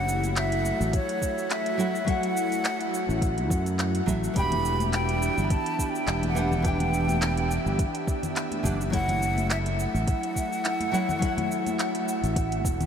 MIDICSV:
0, 0, Header, 1, 6, 480
1, 0, Start_track
1, 0, Tempo, 571429
1, 1744, Time_signature, 4, 2, 24, 8
1, 10804, End_track
2, 0, Start_track
2, 0, Title_t, "Flute"
2, 0, Program_c, 0, 73
2, 0, Note_on_c, 0, 78, 127
2, 320, Note_on_c, 0, 76, 107
2, 333, Note_off_c, 0, 78, 0
2, 792, Note_off_c, 0, 76, 0
2, 795, Note_on_c, 0, 73, 104
2, 1275, Note_on_c, 0, 76, 104
2, 1287, Note_off_c, 0, 73, 0
2, 1755, Note_on_c, 0, 78, 110
2, 1768, Note_off_c, 0, 76, 0
2, 2709, Note_off_c, 0, 78, 0
2, 3671, Note_on_c, 0, 83, 125
2, 4114, Note_off_c, 0, 83, 0
2, 4153, Note_on_c, 0, 79, 101
2, 4574, Note_on_c, 0, 83, 77
2, 4586, Note_off_c, 0, 79, 0
2, 4632, Note_on_c, 0, 81, 111
2, 4645, Note_off_c, 0, 83, 0
2, 4892, Note_off_c, 0, 81, 0
2, 4892, Note_on_c, 0, 81, 67
2, 4953, Note_on_c, 0, 79, 89
2, 4965, Note_off_c, 0, 81, 0
2, 5268, Note_off_c, 0, 79, 0
2, 5278, Note_on_c, 0, 78, 85
2, 5597, Note_on_c, 0, 79, 96
2, 5610, Note_off_c, 0, 78, 0
2, 6550, Note_off_c, 0, 79, 0
2, 7511, Note_on_c, 0, 78, 127
2, 7954, Note_off_c, 0, 78, 0
2, 7992, Note_on_c, 0, 76, 105
2, 8045, Note_off_c, 0, 76, 0
2, 8231, Note_on_c, 0, 78, 105
2, 10804, Note_off_c, 0, 78, 0
2, 10804, End_track
3, 0, Start_track
3, 0, Title_t, "Nylon-string guitar"
3, 0, Program_c, 1, 24
3, 0, Note_on_c, 1, 54, 83
3, 0, Note_on_c, 1, 64, 74
3, 0, Note_on_c, 1, 69, 78
3, 0, Note_on_c, 1, 78, 88
3, 1468, Note_off_c, 1, 54, 0
3, 1476, Note_off_c, 1, 64, 0
3, 1483, Note_off_c, 1, 69, 0
3, 1491, Note_off_c, 1, 78, 0
3, 1492, Note_on_c, 1, 54, 75
3, 1499, Note_on_c, 1, 64, 71
3, 1507, Note_on_c, 1, 69, 69
3, 1514, Note_on_c, 1, 78, 84
3, 1627, Note_off_c, 1, 54, 0
3, 1631, Note_off_c, 1, 64, 0
3, 1635, Note_off_c, 1, 69, 0
3, 1638, Note_off_c, 1, 78, 0
3, 1719, Note_on_c, 1, 54, 76
3, 1735, Note_on_c, 1, 64, 73
3, 1749, Note_on_c, 1, 69, 72
3, 1765, Note_on_c, 1, 78, 89
3, 3385, Note_off_c, 1, 54, 0
3, 3393, Note_off_c, 1, 64, 0
3, 3400, Note_off_c, 1, 69, 0
3, 3408, Note_off_c, 1, 78, 0
3, 3411, Note_on_c, 1, 54, 74
3, 3421, Note_on_c, 1, 64, 71
3, 3427, Note_on_c, 1, 69, 67
3, 3434, Note_on_c, 1, 76, 81
3, 3632, Note_off_c, 1, 54, 0
3, 3636, Note_off_c, 1, 64, 0
3, 3639, Note_off_c, 1, 69, 0
3, 3642, Note_on_c, 1, 52, 82
3, 3643, Note_off_c, 1, 76, 0
3, 3657, Note_on_c, 1, 62, 71
3, 3671, Note_on_c, 1, 67, 74
3, 3688, Note_on_c, 1, 79, 87
3, 5307, Note_off_c, 1, 52, 0
3, 5314, Note_off_c, 1, 62, 0
3, 5321, Note_off_c, 1, 67, 0
3, 5330, Note_off_c, 1, 79, 0
3, 5333, Note_on_c, 1, 52, 72
3, 5340, Note_on_c, 1, 62, 66
3, 5348, Note_on_c, 1, 67, 68
3, 5355, Note_on_c, 1, 78, 85
3, 5468, Note_off_c, 1, 52, 0
3, 5472, Note_off_c, 1, 62, 0
3, 5476, Note_off_c, 1, 67, 0
3, 5479, Note_off_c, 1, 78, 0
3, 5564, Note_on_c, 1, 52, 78
3, 5579, Note_on_c, 1, 62, 75
3, 5595, Note_on_c, 1, 67, 77
3, 5608, Note_on_c, 1, 79, 92
3, 7228, Note_off_c, 1, 52, 0
3, 7235, Note_off_c, 1, 62, 0
3, 7243, Note_off_c, 1, 67, 0
3, 7249, Note_on_c, 1, 52, 71
3, 7250, Note_off_c, 1, 79, 0
3, 7256, Note_on_c, 1, 62, 72
3, 7265, Note_on_c, 1, 67, 67
3, 7271, Note_on_c, 1, 78, 77
3, 7386, Note_off_c, 1, 52, 0
3, 7389, Note_off_c, 1, 62, 0
3, 7394, Note_off_c, 1, 67, 0
3, 7397, Note_off_c, 1, 78, 0
3, 7477, Note_on_c, 1, 54, 82
3, 7495, Note_on_c, 1, 64, 77
3, 7509, Note_on_c, 1, 69, 74
3, 7523, Note_on_c, 1, 78, 85
3, 9144, Note_off_c, 1, 54, 0
3, 9153, Note_off_c, 1, 64, 0
3, 9160, Note_off_c, 1, 69, 0
3, 9168, Note_off_c, 1, 78, 0
3, 9170, Note_on_c, 1, 54, 77
3, 9178, Note_on_c, 1, 64, 70
3, 9184, Note_on_c, 1, 69, 70
3, 9193, Note_on_c, 1, 78, 83
3, 9307, Note_off_c, 1, 54, 0
3, 9311, Note_off_c, 1, 64, 0
3, 9313, Note_off_c, 1, 69, 0
3, 9318, Note_off_c, 1, 78, 0
3, 9398, Note_on_c, 1, 54, 85
3, 9413, Note_on_c, 1, 64, 77
3, 9429, Note_on_c, 1, 69, 76
3, 9444, Note_on_c, 1, 78, 95
3, 10804, Note_off_c, 1, 54, 0
3, 10804, Note_off_c, 1, 64, 0
3, 10804, Note_off_c, 1, 69, 0
3, 10804, Note_off_c, 1, 78, 0
3, 10804, End_track
4, 0, Start_track
4, 0, Title_t, "Analog synth pad"
4, 0, Program_c, 2, 89
4, 0, Note_on_c, 2, 57, 76
4, 0, Note_on_c, 2, 64, 77
4, 0, Note_on_c, 2, 66, 86
4, 3628, Note_off_c, 2, 64, 0
4, 3630, Note_off_c, 2, 66, 0
4, 3631, Note_off_c, 2, 57, 0
4, 3659, Note_on_c, 2, 62, 77
4, 3660, Note_on_c, 2, 52, 84
4, 3660, Note_on_c, 2, 67, 95
4, 3660, Note_on_c, 2, 76, 73
4, 3661, Note_on_c, 2, 59, 79
4, 7468, Note_off_c, 2, 52, 0
4, 7468, Note_off_c, 2, 59, 0
4, 7468, Note_off_c, 2, 62, 0
4, 7468, Note_off_c, 2, 67, 0
4, 7504, Note_on_c, 2, 57, 86
4, 7505, Note_on_c, 2, 64, 75
4, 10804, Note_off_c, 2, 57, 0
4, 10804, Note_off_c, 2, 64, 0
4, 10804, Note_off_c, 2, 76, 0
4, 10804, End_track
5, 0, Start_track
5, 0, Title_t, "Fretless electric bass"
5, 0, Program_c, 3, 35
5, 0, Note_on_c, 3, 30, 88
5, 597, Note_off_c, 3, 30, 0
5, 674, Note_on_c, 3, 33, 80
5, 818, Note_off_c, 3, 33, 0
5, 2594, Note_on_c, 3, 33, 82
5, 2942, Note_off_c, 3, 33, 0
5, 2942, Note_on_c, 3, 42, 84
5, 3360, Note_off_c, 3, 42, 0
5, 3422, Note_on_c, 3, 33, 98
5, 3584, Note_off_c, 3, 33, 0
5, 3662, Note_on_c, 3, 28, 93
5, 4437, Note_off_c, 3, 28, 0
5, 4515, Note_on_c, 3, 31, 77
5, 4658, Note_off_c, 3, 31, 0
5, 5103, Note_on_c, 3, 28, 95
5, 6358, Note_off_c, 3, 28, 0
5, 6434, Note_on_c, 3, 31, 79
5, 6578, Note_off_c, 3, 31, 0
5, 7263, Note_on_c, 3, 30, 86
5, 8278, Note_off_c, 3, 30, 0
5, 8352, Note_on_c, 3, 33, 78
5, 8497, Note_off_c, 3, 33, 0
5, 10276, Note_on_c, 3, 33, 84
5, 10623, Note_off_c, 3, 33, 0
5, 10623, Note_on_c, 3, 28, 89
5, 10804, Note_off_c, 3, 28, 0
5, 10804, End_track
6, 0, Start_track
6, 0, Title_t, "Drums"
6, 71, Note_on_c, 9, 82, 79
6, 155, Note_off_c, 9, 82, 0
6, 197, Note_on_c, 9, 42, 30
6, 202, Note_on_c, 9, 82, 44
6, 281, Note_off_c, 9, 42, 0
6, 286, Note_off_c, 9, 82, 0
6, 306, Note_on_c, 9, 39, 112
6, 306, Note_on_c, 9, 42, 66
6, 311, Note_on_c, 9, 82, 36
6, 390, Note_off_c, 9, 39, 0
6, 390, Note_off_c, 9, 42, 0
6, 395, Note_off_c, 9, 82, 0
6, 437, Note_on_c, 9, 42, 42
6, 521, Note_off_c, 9, 42, 0
6, 549, Note_on_c, 9, 82, 79
6, 633, Note_off_c, 9, 82, 0
6, 681, Note_on_c, 9, 82, 45
6, 765, Note_off_c, 9, 82, 0
6, 783, Note_on_c, 9, 36, 125
6, 784, Note_on_c, 9, 42, 60
6, 789, Note_on_c, 9, 82, 34
6, 867, Note_off_c, 9, 36, 0
6, 868, Note_off_c, 9, 42, 0
6, 873, Note_off_c, 9, 82, 0
6, 917, Note_on_c, 9, 42, 44
6, 1001, Note_off_c, 9, 42, 0
6, 1023, Note_on_c, 9, 36, 66
6, 1029, Note_on_c, 9, 82, 79
6, 1107, Note_off_c, 9, 36, 0
6, 1113, Note_off_c, 9, 82, 0
6, 1161, Note_on_c, 9, 82, 45
6, 1245, Note_off_c, 9, 82, 0
6, 1264, Note_on_c, 9, 39, 95
6, 1264, Note_on_c, 9, 42, 58
6, 1269, Note_on_c, 9, 82, 33
6, 1348, Note_off_c, 9, 39, 0
6, 1348, Note_off_c, 9, 42, 0
6, 1353, Note_off_c, 9, 82, 0
6, 1396, Note_on_c, 9, 42, 47
6, 1480, Note_off_c, 9, 42, 0
6, 1508, Note_on_c, 9, 82, 79
6, 1592, Note_off_c, 9, 82, 0
6, 1640, Note_on_c, 9, 82, 47
6, 1724, Note_off_c, 9, 82, 0
6, 1743, Note_on_c, 9, 36, 111
6, 1744, Note_on_c, 9, 42, 58
6, 1749, Note_on_c, 9, 82, 30
6, 1827, Note_off_c, 9, 36, 0
6, 1828, Note_off_c, 9, 42, 0
6, 1833, Note_off_c, 9, 82, 0
6, 1875, Note_on_c, 9, 42, 43
6, 1959, Note_off_c, 9, 42, 0
6, 1990, Note_on_c, 9, 82, 82
6, 2074, Note_off_c, 9, 82, 0
6, 2116, Note_on_c, 9, 42, 28
6, 2122, Note_on_c, 9, 82, 44
6, 2200, Note_off_c, 9, 42, 0
6, 2206, Note_off_c, 9, 82, 0
6, 2224, Note_on_c, 9, 39, 105
6, 2224, Note_on_c, 9, 42, 67
6, 2229, Note_on_c, 9, 82, 36
6, 2308, Note_off_c, 9, 39, 0
6, 2308, Note_off_c, 9, 42, 0
6, 2313, Note_off_c, 9, 82, 0
6, 2357, Note_on_c, 9, 42, 43
6, 2441, Note_off_c, 9, 42, 0
6, 2470, Note_on_c, 9, 82, 78
6, 2554, Note_off_c, 9, 82, 0
6, 2603, Note_on_c, 9, 82, 44
6, 2687, Note_off_c, 9, 82, 0
6, 2703, Note_on_c, 9, 36, 113
6, 2706, Note_on_c, 9, 42, 62
6, 2711, Note_on_c, 9, 82, 34
6, 2787, Note_off_c, 9, 36, 0
6, 2790, Note_off_c, 9, 42, 0
6, 2795, Note_off_c, 9, 82, 0
6, 2837, Note_on_c, 9, 42, 43
6, 2921, Note_off_c, 9, 42, 0
6, 2943, Note_on_c, 9, 36, 103
6, 2950, Note_on_c, 9, 82, 78
6, 3027, Note_off_c, 9, 36, 0
6, 3034, Note_off_c, 9, 82, 0
6, 3077, Note_on_c, 9, 42, 30
6, 3082, Note_on_c, 9, 82, 44
6, 3161, Note_off_c, 9, 42, 0
6, 3166, Note_off_c, 9, 82, 0
6, 3184, Note_on_c, 9, 39, 99
6, 3184, Note_on_c, 9, 42, 61
6, 3189, Note_on_c, 9, 82, 34
6, 3268, Note_off_c, 9, 39, 0
6, 3268, Note_off_c, 9, 42, 0
6, 3273, Note_off_c, 9, 82, 0
6, 3316, Note_on_c, 9, 42, 45
6, 3400, Note_off_c, 9, 42, 0
6, 3423, Note_on_c, 9, 36, 69
6, 3428, Note_on_c, 9, 82, 82
6, 3507, Note_off_c, 9, 36, 0
6, 3512, Note_off_c, 9, 82, 0
6, 3560, Note_on_c, 9, 82, 43
6, 3644, Note_off_c, 9, 82, 0
6, 3662, Note_on_c, 9, 42, 63
6, 3663, Note_on_c, 9, 36, 98
6, 3667, Note_on_c, 9, 82, 32
6, 3746, Note_off_c, 9, 42, 0
6, 3747, Note_off_c, 9, 36, 0
6, 3751, Note_off_c, 9, 82, 0
6, 3794, Note_on_c, 9, 64, 72
6, 3796, Note_on_c, 9, 42, 42
6, 3796, Note_on_c, 9, 63, 59
6, 3878, Note_off_c, 9, 64, 0
6, 3880, Note_off_c, 9, 42, 0
6, 3880, Note_off_c, 9, 63, 0
6, 3907, Note_on_c, 9, 82, 77
6, 3991, Note_off_c, 9, 82, 0
6, 4034, Note_on_c, 9, 42, 29
6, 4034, Note_on_c, 9, 63, 86
6, 4039, Note_on_c, 9, 82, 44
6, 4118, Note_off_c, 9, 42, 0
6, 4118, Note_off_c, 9, 63, 0
6, 4123, Note_off_c, 9, 82, 0
6, 4142, Note_on_c, 9, 39, 99
6, 4142, Note_on_c, 9, 42, 68
6, 4147, Note_on_c, 9, 82, 34
6, 4226, Note_off_c, 9, 39, 0
6, 4226, Note_off_c, 9, 42, 0
6, 4231, Note_off_c, 9, 82, 0
6, 4274, Note_on_c, 9, 42, 40
6, 4358, Note_off_c, 9, 42, 0
6, 4387, Note_on_c, 9, 82, 81
6, 4471, Note_off_c, 9, 82, 0
6, 4519, Note_on_c, 9, 82, 43
6, 4603, Note_off_c, 9, 82, 0
6, 4623, Note_on_c, 9, 36, 117
6, 4623, Note_on_c, 9, 42, 59
6, 4628, Note_on_c, 9, 82, 32
6, 4707, Note_off_c, 9, 36, 0
6, 4707, Note_off_c, 9, 42, 0
6, 4712, Note_off_c, 9, 82, 0
6, 4756, Note_on_c, 9, 42, 42
6, 4840, Note_off_c, 9, 42, 0
6, 4863, Note_on_c, 9, 36, 61
6, 4869, Note_on_c, 9, 82, 79
6, 4947, Note_off_c, 9, 36, 0
6, 4953, Note_off_c, 9, 82, 0
6, 5000, Note_on_c, 9, 82, 43
6, 5084, Note_off_c, 9, 82, 0
6, 5103, Note_on_c, 9, 39, 92
6, 5103, Note_on_c, 9, 42, 57
6, 5108, Note_on_c, 9, 82, 33
6, 5187, Note_off_c, 9, 39, 0
6, 5187, Note_off_c, 9, 42, 0
6, 5192, Note_off_c, 9, 82, 0
6, 5233, Note_on_c, 9, 42, 43
6, 5235, Note_on_c, 9, 63, 64
6, 5317, Note_off_c, 9, 42, 0
6, 5319, Note_off_c, 9, 63, 0
6, 5346, Note_on_c, 9, 63, 72
6, 5347, Note_on_c, 9, 82, 74
6, 5430, Note_off_c, 9, 63, 0
6, 5431, Note_off_c, 9, 82, 0
6, 5475, Note_on_c, 9, 64, 79
6, 5480, Note_on_c, 9, 82, 42
6, 5559, Note_off_c, 9, 64, 0
6, 5564, Note_off_c, 9, 82, 0
6, 5583, Note_on_c, 9, 36, 106
6, 5583, Note_on_c, 9, 42, 62
6, 5588, Note_on_c, 9, 82, 28
6, 5667, Note_off_c, 9, 36, 0
6, 5667, Note_off_c, 9, 42, 0
6, 5672, Note_off_c, 9, 82, 0
6, 5714, Note_on_c, 9, 42, 44
6, 5714, Note_on_c, 9, 64, 68
6, 5720, Note_on_c, 9, 63, 61
6, 5798, Note_off_c, 9, 42, 0
6, 5798, Note_off_c, 9, 64, 0
6, 5804, Note_off_c, 9, 63, 0
6, 5827, Note_on_c, 9, 82, 68
6, 5911, Note_off_c, 9, 82, 0
6, 5950, Note_on_c, 9, 63, 83
6, 5956, Note_on_c, 9, 42, 29
6, 5961, Note_on_c, 9, 82, 44
6, 6034, Note_off_c, 9, 63, 0
6, 6040, Note_off_c, 9, 42, 0
6, 6045, Note_off_c, 9, 82, 0
6, 6064, Note_on_c, 9, 39, 92
6, 6064, Note_on_c, 9, 42, 71
6, 6069, Note_on_c, 9, 82, 35
6, 6148, Note_off_c, 9, 39, 0
6, 6148, Note_off_c, 9, 42, 0
6, 6153, Note_off_c, 9, 82, 0
6, 6195, Note_on_c, 9, 42, 43
6, 6279, Note_off_c, 9, 42, 0
6, 6308, Note_on_c, 9, 82, 77
6, 6392, Note_off_c, 9, 82, 0
6, 6440, Note_on_c, 9, 82, 42
6, 6524, Note_off_c, 9, 82, 0
6, 6542, Note_on_c, 9, 36, 112
6, 6544, Note_on_c, 9, 42, 63
6, 6549, Note_on_c, 9, 82, 32
6, 6626, Note_off_c, 9, 36, 0
6, 6628, Note_off_c, 9, 42, 0
6, 6633, Note_off_c, 9, 82, 0
6, 6676, Note_on_c, 9, 42, 45
6, 6760, Note_off_c, 9, 42, 0
6, 6783, Note_on_c, 9, 36, 101
6, 6788, Note_on_c, 9, 82, 73
6, 6867, Note_off_c, 9, 36, 0
6, 6872, Note_off_c, 9, 82, 0
6, 6915, Note_on_c, 9, 42, 30
6, 6915, Note_on_c, 9, 64, 80
6, 6920, Note_on_c, 9, 82, 43
6, 6999, Note_off_c, 9, 42, 0
6, 6999, Note_off_c, 9, 64, 0
6, 7004, Note_off_c, 9, 82, 0
6, 7024, Note_on_c, 9, 39, 90
6, 7024, Note_on_c, 9, 42, 59
6, 7030, Note_on_c, 9, 82, 30
6, 7108, Note_off_c, 9, 39, 0
6, 7108, Note_off_c, 9, 42, 0
6, 7114, Note_off_c, 9, 82, 0
6, 7152, Note_on_c, 9, 63, 60
6, 7155, Note_on_c, 9, 42, 47
6, 7236, Note_off_c, 9, 63, 0
6, 7239, Note_off_c, 9, 42, 0
6, 7257, Note_on_c, 9, 64, 80
6, 7260, Note_on_c, 9, 63, 69
6, 7263, Note_on_c, 9, 36, 59
6, 7269, Note_on_c, 9, 82, 78
6, 7341, Note_off_c, 9, 64, 0
6, 7344, Note_off_c, 9, 63, 0
6, 7347, Note_off_c, 9, 36, 0
6, 7353, Note_off_c, 9, 82, 0
6, 7401, Note_on_c, 9, 82, 41
6, 7485, Note_off_c, 9, 82, 0
6, 7503, Note_on_c, 9, 36, 97
6, 7505, Note_on_c, 9, 42, 66
6, 7510, Note_on_c, 9, 82, 31
6, 7587, Note_off_c, 9, 36, 0
6, 7589, Note_off_c, 9, 42, 0
6, 7594, Note_off_c, 9, 82, 0
6, 7631, Note_on_c, 9, 64, 80
6, 7635, Note_on_c, 9, 63, 61
6, 7636, Note_on_c, 9, 42, 44
6, 7715, Note_off_c, 9, 64, 0
6, 7719, Note_off_c, 9, 63, 0
6, 7720, Note_off_c, 9, 42, 0
6, 7749, Note_on_c, 9, 82, 70
6, 7833, Note_off_c, 9, 82, 0
6, 7868, Note_on_c, 9, 63, 81
6, 7877, Note_on_c, 9, 42, 30
6, 7882, Note_on_c, 9, 82, 45
6, 7952, Note_off_c, 9, 63, 0
6, 7961, Note_off_c, 9, 42, 0
6, 7966, Note_off_c, 9, 82, 0
6, 7983, Note_on_c, 9, 39, 99
6, 7983, Note_on_c, 9, 42, 68
6, 7988, Note_on_c, 9, 82, 34
6, 8067, Note_off_c, 9, 39, 0
6, 8067, Note_off_c, 9, 42, 0
6, 8072, Note_off_c, 9, 82, 0
6, 8115, Note_on_c, 9, 42, 49
6, 8199, Note_off_c, 9, 42, 0
6, 8227, Note_on_c, 9, 82, 76
6, 8311, Note_off_c, 9, 82, 0
6, 8361, Note_on_c, 9, 82, 39
6, 8445, Note_off_c, 9, 82, 0
6, 8463, Note_on_c, 9, 36, 116
6, 8463, Note_on_c, 9, 42, 65
6, 8468, Note_on_c, 9, 82, 31
6, 8547, Note_off_c, 9, 36, 0
6, 8547, Note_off_c, 9, 42, 0
6, 8552, Note_off_c, 9, 82, 0
6, 8596, Note_on_c, 9, 42, 43
6, 8680, Note_off_c, 9, 42, 0
6, 8703, Note_on_c, 9, 36, 55
6, 8709, Note_on_c, 9, 82, 74
6, 8787, Note_off_c, 9, 36, 0
6, 8793, Note_off_c, 9, 82, 0
6, 8842, Note_on_c, 9, 82, 41
6, 8926, Note_off_c, 9, 82, 0
6, 8945, Note_on_c, 9, 39, 98
6, 8945, Note_on_c, 9, 42, 70
6, 8950, Note_on_c, 9, 82, 31
6, 9029, Note_off_c, 9, 39, 0
6, 9029, Note_off_c, 9, 42, 0
6, 9034, Note_off_c, 9, 82, 0
6, 9075, Note_on_c, 9, 63, 70
6, 9077, Note_on_c, 9, 42, 46
6, 9159, Note_off_c, 9, 63, 0
6, 9161, Note_off_c, 9, 42, 0
6, 9185, Note_on_c, 9, 63, 66
6, 9191, Note_on_c, 9, 82, 78
6, 9269, Note_off_c, 9, 63, 0
6, 9275, Note_off_c, 9, 82, 0
6, 9315, Note_on_c, 9, 64, 77
6, 9323, Note_on_c, 9, 82, 41
6, 9399, Note_off_c, 9, 64, 0
6, 9407, Note_off_c, 9, 82, 0
6, 9424, Note_on_c, 9, 36, 105
6, 9427, Note_on_c, 9, 42, 65
6, 9432, Note_on_c, 9, 82, 33
6, 9508, Note_off_c, 9, 36, 0
6, 9511, Note_off_c, 9, 42, 0
6, 9516, Note_off_c, 9, 82, 0
6, 9556, Note_on_c, 9, 63, 64
6, 9556, Note_on_c, 9, 64, 82
6, 9559, Note_on_c, 9, 42, 46
6, 9640, Note_off_c, 9, 63, 0
6, 9640, Note_off_c, 9, 64, 0
6, 9643, Note_off_c, 9, 42, 0
6, 9673, Note_on_c, 9, 82, 70
6, 9757, Note_off_c, 9, 82, 0
6, 9798, Note_on_c, 9, 42, 34
6, 9799, Note_on_c, 9, 63, 74
6, 9804, Note_on_c, 9, 82, 46
6, 9882, Note_off_c, 9, 42, 0
6, 9883, Note_off_c, 9, 63, 0
6, 9888, Note_off_c, 9, 82, 0
6, 9907, Note_on_c, 9, 39, 102
6, 9907, Note_on_c, 9, 42, 70
6, 9912, Note_on_c, 9, 82, 35
6, 9991, Note_off_c, 9, 39, 0
6, 9991, Note_off_c, 9, 42, 0
6, 9996, Note_off_c, 9, 82, 0
6, 10037, Note_on_c, 9, 42, 47
6, 10121, Note_off_c, 9, 42, 0
6, 10151, Note_on_c, 9, 82, 77
6, 10235, Note_off_c, 9, 82, 0
6, 10278, Note_on_c, 9, 42, 31
6, 10283, Note_on_c, 9, 82, 41
6, 10362, Note_off_c, 9, 42, 0
6, 10367, Note_off_c, 9, 82, 0
6, 10384, Note_on_c, 9, 36, 114
6, 10386, Note_on_c, 9, 42, 68
6, 10391, Note_on_c, 9, 82, 33
6, 10468, Note_off_c, 9, 36, 0
6, 10470, Note_off_c, 9, 42, 0
6, 10475, Note_off_c, 9, 82, 0
6, 10518, Note_on_c, 9, 42, 44
6, 10602, Note_off_c, 9, 42, 0
6, 10624, Note_on_c, 9, 36, 99
6, 10630, Note_on_c, 9, 82, 78
6, 10708, Note_off_c, 9, 36, 0
6, 10714, Note_off_c, 9, 82, 0
6, 10757, Note_on_c, 9, 42, 31
6, 10757, Note_on_c, 9, 64, 88
6, 10762, Note_on_c, 9, 82, 43
6, 10804, Note_off_c, 9, 42, 0
6, 10804, Note_off_c, 9, 64, 0
6, 10804, Note_off_c, 9, 82, 0
6, 10804, End_track
0, 0, End_of_file